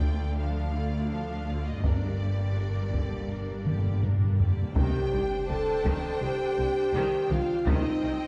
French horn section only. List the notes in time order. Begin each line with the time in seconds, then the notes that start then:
Already playing: D3 A4
1.84 A#4
4.77 G4
5.50 A4
6.21 G4
7.31 F4
7.69 D#4